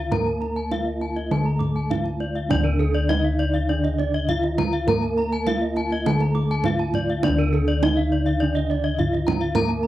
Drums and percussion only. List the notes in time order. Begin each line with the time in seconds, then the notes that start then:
0.12 kendang high, kendang low
0.42 kendang slap
0.71 kendang high
1.01 kendang slap
1.17 kendang slap
1.31 kendang slap, kendang high
1.60 kendang slap, kendang low
1.91 kendang high, kendang low
2.05 kendang slap
2.20 kendang slap
2.36 kendang slap
2.51 kendang high, kendang low
2.80 kendang slap
3.10 kendang high
3.40 kendang slap
3.55 kendang slap
3.85 kendang slap
3.99 kendang slap
4.29 kendang low
4.44 kendang slap
4.58 kendang slap, kendang high, kendang low
4.88 kendang high, kendang low
5.18 kendang slap
5.46 kendang high
5.76 kendang slap
5.91 kendang slap
6.06 kendang high
6.20 kendang slap
6.35 kendang slap
6.64 kendang high, kendang low
6.79 kendang slap
6.94 kendang slap, kendang low
7.23 kendang high, kendang low
7.54 kendang slap
7.83 kendang high
8.13 kendang slap
8.27 kendang slap
8.56 kendang slap
8.71 kendang slap
8.99 kendang low
9.14 kendang slap
9.28 kendang slap, kendang high, kendang low
9.55 kendang high, kendang low
9.84 kendang slap